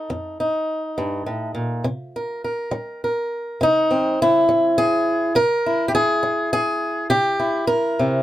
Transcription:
steel-string acoustic guitar
Already playing: D#4 A4
0.10 F2
0.40 D#4
0.98 G2
1.26 A2
1.55 A#2
1.84 C3
2.16 A#4
2.44 A#4
2.71 G3
3.04 A#4
3.61 C3 D#4
3.91 C4
4.22 E4
4.49 G3
4.78 G#4
5.35 C3 A#4
5.66 E4
5.88 G4
5.95 G#4
6.23 G3
6.53 G#4
7.10 C3 G4
7.39 E4
7.67 A#4
7.99 C3

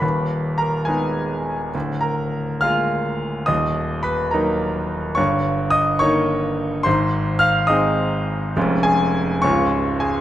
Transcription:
grand piano
0.00 D#1 D#2 B4 B5
0.58 A#4 A#5
0.85 G#3 B3 D#4 G#4 G#5
1.75 D1 D2
2.01 A#4 A#5
2.61 G#3 A#3 F4 F5 F6
3.46 D#1 D#2 D#5 D#6
4.03 B4 B5
4.31 F#3 A#3 D#4 A#4 A#5
5.15 G1 G2 C#5 C#6
5.70 D#5 D#6
5.99 D#3 A#3 D#4 C#5 C#6
6.83 G#1 G#2 C5 C6
7.39 F5 F6
7.67 G#3 C4 D#4 D#5 D#6
8.57 F1 F2 G#3 C#4 F4
8.83 G#4 G#5
9.42 C#1 C#2 G#3 C#4 F4 C#5 C#6
10.00 G#4 G#5

